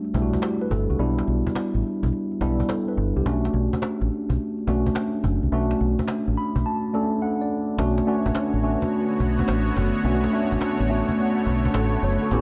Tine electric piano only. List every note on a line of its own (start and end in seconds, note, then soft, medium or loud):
0.00 0.14 G3 medium
0.00 0.15 A3 medium
0.00 0.15 D4 medium
0.00 0.22 F#4 medium
0.14 0.68 G3 medium
0.14 0.69 A3 medium
0.14 0.69 D4 medium
0.14 0.24 E4 medium
0.22 0.46 F#4 medium
0.43 0.61 G4 medium
0.61 0.70 B4 medium
0.71 0.89 A4 medium
0.90 1.17 F#4 medium
0.99 1.74 G3 medium
0.99 1.74 B3 medium
0.99 1.75 D4 medium
0.99 1.75 E4 medium
2.41 2.95 G3 medium
2.41 2.95 B3 medium
2.41 2.95 D4 medium
2.41 2.95 E4 medium
2.69 2.87 A4 medium
2.88 3.15 B4 medium
3.17 3.43 G4 medium
3.26 4.01 A3 medium
3.26 4.01 C#4 medium
3.26 4.01 D4 medium
3.26 4.01 F#4 loud
4.68 5.21 A3 medium
4.68 5.22 C#4 medium
4.68 5.22 D4 medium
4.68 5.22 F#4 medium
5.52 6.27 A3 medium
5.52 6.27 C#4 medium
5.52 6.27 D4 medium
5.52 6.28 F#4 loud
6.37 6.64 B5 medium
6.66 7.18 A5 medium
6.93 7.47 A3 medium
6.93 7.48 C#4 medium
6.93 7.48 D4 medium
6.93 7.48 A4 medium
7.22 7.40 F#5 medium
7.41 7.76 D5 medium
7.78 8.00 A3 medium
7.78 8.00 C#4 medium
7.78 8.00 D4 medium
7.78 8.00 F#4 loud
8.07 8.44 A3 medium
8.07 8.44 C#4 medium
8.07 8.45 D4 medium
8.07 8.45 F#4 medium
8.63 9.38 A3 medium
8.63 9.39 C#4 medium
8.63 9.39 D4 medium
8.63 9.39 F#4 medium
10.05 10.26 A3 medium
10.05 10.26 C#4 medium
10.05 10.26 D4 medium
10.05 10.27 F#4 medium
10.33 10.70 A3 medium
10.33 10.71 C#4 medium
10.33 10.71 D4 medium
10.33 10.71 F#4 medium
10.90 11.65 A3 medium
10.90 11.65 C#4 medium
10.90 11.65 D4 medium
10.90 11.65 F#4 medium
11.76 12.02 A4 medium
12.04 12.21 C#5 medium
12.23 12.41 A4 medium
12.32 12.41 B3 medium
12.32 12.41 C#4 medium
12.32 12.41 E4 medium
12.32 12.41 G4 loud